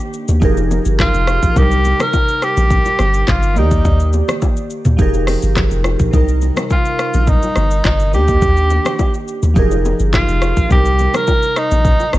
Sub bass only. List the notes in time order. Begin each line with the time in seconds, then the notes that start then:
0.29 D#2
0.42 F1
0.86 G1
1.14 F1
1.43 A#1
1.56 C2
2.57 A#1
2.99 G1
3.28 G1
3.57 D#2
3.85 D#2
4.86 D#2
4.99 F1
5.43 G1
5.71 F1
6.00 A#1
6.13 C2
7.14 A#1
7.56 G1
7.85 G1
8.13 D#2
8.42 D#2
9.43 D#2
9.56 F1
10.00 G1
10.28 F1
10.57 A#1
10.71 C2
11.71 A#1
12.14 G1